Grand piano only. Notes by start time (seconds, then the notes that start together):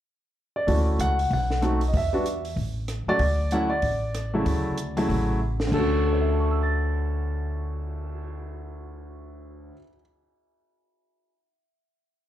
0.56 D5
0.67 A3 C#4 E4 F#4
1.01 F#5
1.33 F#5
1.62 A3 C4 D#4 F#4
1.88 D#5
1.97 E5
2.13 G3 B3 D4 F#4
3.08 F#3 A3 C#4 F#4 D5
3.52 F#3 A3 C#4 E4 F#5
3.70 D5
4.34 C#3 F#3 A3 E4
4.97 C#3 F#3 A3 E4
5.67 D2
5.71 D3 C#4 A4
5.79 F#4
6.05 A4
6.13 C#5
6.21 E5
6.30 A5
6.40 C#6
6.51 E6
6.63 A6